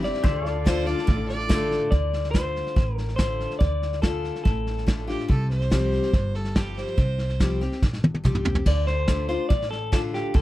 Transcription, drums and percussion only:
0.04 snare soft
0.14 snare soft
0.24 kick loud
0.24 snare soft
0.46 snare soft
0.66 kick medium
0.66 snare loud
0.66 hi-hat pedal medium
0.87 snare soft
0.98 snare soft
1.08 kick loud
1.08 snare soft
1.29 snare soft
1.40 snare soft
1.50 kick medium
1.50 snare loud
1.50 hi-hat pedal medium
1.71 snare soft
1.92 kick medium
1.92 snare soft
2.13 snare soft
2.24 snare soft
2.34 kick medium
2.34 snare medium
2.34 hi-hat pedal medium
2.56 snare soft
2.67 snare soft
2.76 kick medium
2.76 snare soft
2.98 snare soft
3.08 snare soft
3.19 kick medium
3.19 snare medium
3.19 hi-hat pedal medium
3.40 snare soft
3.51 snare soft
3.60 kick loud
3.60 snare soft
3.82 snare soft
3.93 snare soft
4.03 kick medium
4.03 snare loud
4.03 hi-hat pedal medium
4.24 snare soft
4.35 snare soft
4.46 kick medium
4.46 snare soft
4.67 snare soft
4.78 snare soft
4.88 kick medium
4.88 snare loud
4.88 hi-hat pedal medium
5.09 snare soft
5.20 snare soft
5.30 kick loud
5.30 snare soft
5.51 snare soft
5.61 snare soft
5.71 kick medium
5.71 snare medium
5.71 hi-hat pedal medium
5.92 snare soft
6.03 snare soft
6.13 kick medium
6.13 snare soft
6.35 snare soft
6.44 snare soft
6.56 kick medium
6.56 snare medium
6.56 hi-hat pedal medium
6.77 snare soft
6.87 snare soft
6.97 kick loud
6.97 snare soft
7.18 snare soft
7.29 snare soft
7.40 kick medium
7.40 snare medium
7.40 hi-hat pedal medium
7.61 snare soft
7.72 snare soft
7.82 kick medium
7.82 snare soft
7.93 snare soft
8.04 high tom medium
8.14 high tom medium
8.25 kick medium
8.25 hi-hat pedal medium
8.25 mid tom medium
8.35 mid tom medium
8.45 floor tom medium
8.55 floor tom medium
8.66 kick medium
8.66 snare soft
8.66 crash medium
8.87 snare soft
9.08 kick medium
9.08 snare loud
9.08 hi-hat pedal medium
9.29 snare soft
9.50 kick loud
9.50 snare soft
9.62 snare soft
9.72 snare soft
9.93 kick medium
9.93 snare loud
9.93 hi-hat pedal medium
10.14 snare soft
10.34 kick loud
10.34 snare soft

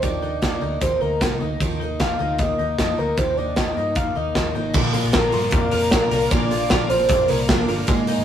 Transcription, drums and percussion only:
0.03 kick medium
0.03 closed hi-hat medium
0.42 kick medium
0.42 snare medium
0.42 closed hi-hat medium
0.81 kick medium
0.81 closed hi-hat medium
1.21 kick medium
1.21 snare loud
1.21 closed hi-hat medium
1.60 kick loud
1.60 closed hi-hat medium
2.00 kick medium
2.00 snare medium
2.00 closed hi-hat medium
2.39 kick loud
2.39 closed hi-hat medium
2.79 kick medium
2.79 snare loud
2.79 closed hi-hat medium
3.17 kick loud
3.17 closed hi-hat medium
3.56 kick medium
3.56 snare medium
3.56 closed hi-hat medium
3.95 kick loud
3.95 closed hi-hat medium
4.35 kick medium
4.35 snare loud
4.35 closed hi-hat medium
4.74 kick loud
4.74 crash medium
4.94 open hi-hat medium
5.13 kick loud
5.13 snare loud
5.13 closed hi-hat medium
5.32 open hi-hat medium
5.51 kick loud
5.51 closed hi-hat medium
5.71 open hi-hat medium
5.91 kick loud
5.91 snare loud
5.91 closed hi-hat medium
6.11 open hi-hat medium
6.31 kick loud
6.31 closed hi-hat medium
6.51 open hi-hat medium
6.70 kick loud
6.70 snare loud
6.70 closed hi-hat medium
6.90 open hi-hat medium
7.09 kick loud
7.09 closed hi-hat medium
7.28 open hi-hat medium
7.49 kick loud
7.49 snare loud
7.49 closed hi-hat medium
7.69 open hi-hat medium
7.88 kick loud
7.88 closed hi-hat medium
8.07 open hi-hat medium

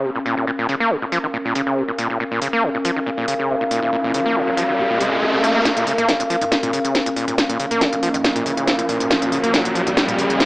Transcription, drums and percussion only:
0.26 open hi-hat loud
0.69 open hi-hat loud
1.12 open hi-hat loud
1.55 open hi-hat loud
1.98 open hi-hat loud
2.42 open hi-hat loud
2.85 open hi-hat loud
3.28 open hi-hat loud
3.71 open hi-hat loud
4.14 open hi-hat loud
4.57 open hi-hat loud
5.01 open hi-hat loud
5.44 open hi-hat loud
5.65 snare soft
5.65 closed hi-hat medium
5.77 closed hi-hat medium
5.87 open hi-hat loud
5.98 closed hi-hat medium
5.98 mid tom medium
6.09 snare soft
6.09 closed hi-hat medium
6.20 closed hi-hat medium
6.30 open hi-hat loud
6.42 closed hi-hat medium
6.42 mid tom medium
6.52 snare soft
6.52 closed hi-hat medium
6.63 closed hi-hat medium
6.63 mid tom medium
6.73 open hi-hat loud
6.85 closed hi-hat medium
6.95 snare soft
6.95 closed hi-hat medium
7.06 closed hi-hat medium
7.17 open hi-hat loud
7.28 closed hi-hat medium
7.28 mid tom medium
7.38 snare medium
7.38 closed hi-hat medium
7.50 closed hi-hat medium
7.60 open hi-hat loud
7.71 closed hi-hat medium
7.71 mid tom medium
7.81 snare medium
7.81 closed hi-hat medium
7.93 closed hi-hat medium
8.03 open hi-hat loud
8.14 closed hi-hat medium
8.14 mid tom medium
8.24 snare medium
8.24 closed hi-hat medium
8.36 closed hi-hat medium
8.36 mid tom medium
8.46 open hi-hat loud
8.57 closed hi-hat medium
8.67 snare medium
8.67 closed hi-hat medium
8.79 closed hi-hat medium
8.89 open hi-hat loud
9.00 closed hi-hat medium
9.00 mid tom medium
9.11 snare medium
9.11 closed hi-hat medium
9.22 closed hi-hat medium
9.32 open hi-hat loud
9.44 closed hi-hat medium
9.44 mid tom medium
9.54 snare medium
9.54 closed hi-hat medium
9.65 closed hi-hat medium
9.75 open hi-hat loud
9.87 closed hi-hat medium
9.87 mid tom medium
9.97 snare medium
9.97 closed hi-hat medium
10.08 closed hi-hat medium
10.08 mid tom loud
10.19 open hi-hat loud
10.30 closed hi-hat medium
10.40 snare medium
10.40 closed hi-hat medium

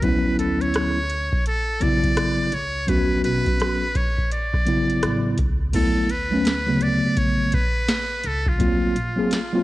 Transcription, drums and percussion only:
0.02 kick loud
0.02 closed hi-hat medium
0.39 closed hi-hat medium
0.61 closed hi-hat soft
0.74 cross-stick loud
0.74 closed hi-hat medium
1.10 closed hi-hat medium
1.32 kick medium
1.46 closed hi-hat medium
1.81 kick medium
1.81 closed hi-hat medium
2.03 kick medium
2.03 closed hi-hat medium
2.17 cross-stick loud
2.17 closed hi-hat loud
2.52 closed hi-hat medium
2.88 kick loud
2.88 closed hi-hat medium
3.24 closed hi-hat medium
3.46 kick medium
3.46 closed hi-hat soft
3.60 cross-stick loud
3.60 closed hi-hat medium
3.95 kick loud
3.95 closed hi-hat medium
4.18 kick medium
4.31 closed hi-hat medium
4.53 kick medium
4.53 cross-stick soft
4.66 closed hi-hat medium
4.90 closed hi-hat medium
5.03 cross-stick loud
5.03 closed hi-hat loud
5.37 kick medium
5.37 closed hi-hat medium
5.73 kick loud
5.73 closed hi-hat medium
5.73 crash medium
6.09 closed hi-hat medium
6.45 snare loud
6.45 closed hi-hat medium
6.81 closed hi-hat medium
7.17 kick medium
7.17 closed hi-hat medium
7.52 kick loud
7.52 closed hi-hat medium
7.88 snare loud
7.88 closed hi-hat loud
8.24 closed hi-hat medium
8.46 kick medium
8.60 kick loud
8.60 closed hi-hat medium
8.96 closed hi-hat medium
9.31 snare loud
9.31 closed hi-hat medium

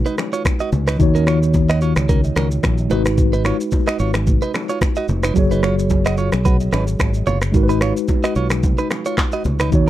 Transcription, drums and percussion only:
0.06 shaker medium
0.18 finger snap medium
0.18 cross-stick medium
0.18 low bongo medium
0.18 shaker medium
0.33 shaker medium
0.45 finger snap medium
0.45 kick loud
0.45 cross-stick loud
0.45 high bongo medium
0.45 shaker medium
0.60 shaker medium
0.72 high bongo medium
0.72 low conga medium
0.72 shaker soft
0.87 finger snap medium
0.87 cross-stick medium
0.87 shaker medium
1.00 kick loud
1.00 low conga medium
1.00 shaker medium
1.16 shaker medium
1.27 finger snap medium
1.27 cross-stick medium
1.27 low bongo medium
1.27 shaker medium
1.43 shaker medium
1.54 kick medium
1.54 high bongo medium
1.54 shaker medium
1.69 finger snap medium
1.69 cross-stick medium
1.69 shaker medium
1.81 shaker medium
1.96 finger snap medium
1.96 cross-stick medium
1.96 low bongo medium
1.96 shaker medium
2.09 kick loud
2.09 low conga medium
2.09 shaker medium
2.24 shaker medium
2.36 finger snap medium
2.36 cross-stick medium
2.36 low bongo medium
2.36 shaker medium
2.51 shaker medium
2.63 finger snap medium
2.63 kick medium
2.63 cross-stick loud
2.63 high bongo medium
2.63 shaker medium
2.78 shaker medium
2.90 high bongo medium
2.90 low conga medium
2.90 shaker medium
3.06 finger snap medium
3.06 cross-stick medium
3.06 shaker medium
3.18 kick loud
3.18 low conga medium
3.18 shaker medium
3.33 shaker medium
3.45 finger snap medium
3.45 cross-stick medium
3.45 low bongo medium
3.45 shaker medium
3.61 shaker medium
3.71 kick medium
3.71 high bongo medium
3.71 shaker medium
3.87 finger snap medium
3.87 cross-stick medium
3.87 shaker medium
3.99 shaker medium
4.14 finger snap medium
4.14 cross-stick loud
4.14 low bongo medium
4.14 shaker medium
4.27 kick loud
4.27 low conga medium
4.27 shaker medium
4.42 shaker medium
4.54 finger snap medium
4.54 cross-stick medium
4.54 low bongo medium
4.54 shaker medium
4.69 shaker medium
4.81 finger snap medium
4.81 kick medium
4.81 cross-stick loud
4.81 high bongo medium
4.81 shaker medium
4.96 shaker medium
5.08 high bongo medium
5.08 low conga medium
5.08 shaker medium
5.23 finger snap medium
5.23 cross-stick medium
5.23 shaker medium
5.36 kick loud
5.36 low conga medium
5.36 shaker medium
5.51 shaker medium
5.63 finger snap medium
5.63 cross-stick medium
5.63 low bongo medium
5.63 shaker medium
5.79 shaker medium
5.90 kick medium
5.90 high bongo medium
5.90 shaker medium
6.05 finger snap medium
6.05 cross-stick medium
6.05 shaker medium
6.17 shaker medium
6.32 finger snap medium
6.32 cross-stick medium
6.32 low bongo medium
6.32 shaker medium
6.45 kick loud
6.45 low conga medium
6.45 shaker medium
6.60 shaker medium
6.72 finger snap medium
6.72 cross-stick medium
6.72 low bongo medium
6.72 shaker medium
6.87 shaker medium
7.00 finger snap medium
7.00 kick medium
7.00 cross-stick loud
7.00 high bongo medium
7.00 shaker medium
7.14 shaker medium
7.26 high bongo medium
7.26 low conga medium
7.26 shaker medium
7.41 finger snap medium
7.41 cross-stick medium
7.41 shaker medium
7.54 kick loud
7.54 low conga medium
7.54 shaker medium
7.70 shaker medium
7.81 finger snap medium
7.81 cross-stick medium
7.81 low bongo medium
7.81 shaker medium
7.97 shaker medium
8.08 kick medium
8.08 high bongo medium
8.08 shaker medium
8.24 finger snap medium
8.24 cross-stick medium
8.24 shaker medium
8.35 shaker medium
8.50 finger snap medium
8.50 cross-stick loud
8.50 low bongo medium
8.50 shaker medium
8.63 kick loud
8.63 low conga medium
8.63 shaker medium
8.78 shaker medium
8.90 finger snap medium
8.90 cross-stick medium
8.90 low bongo medium
8.90 shaker medium
9.06 shaker medium
9.18 finger snap medium
9.18 kick medium
9.18 cross-stick loud
9.18 clap loud
9.18 high bongo medium
9.18 shaker medium
9.32 shaker medium
9.44 high bongo medium
9.44 low conga medium
9.44 shaker medium
9.60 finger snap medium
9.60 cross-stick loud
9.60 shaker medium
9.72 kick loud
9.72 low conga medium
9.72 shaker medium

